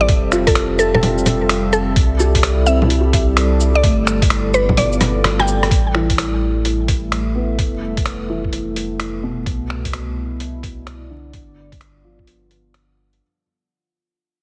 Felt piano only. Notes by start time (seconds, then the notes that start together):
Already playing: C5
0.32 F4
2.20 G4
2.67 C4
2.87 E4
3.00 G4
3.84 A3
5.95 E3
7.35 B3
8.30 E3
9.23 B2
11.10 D3
12.04 F3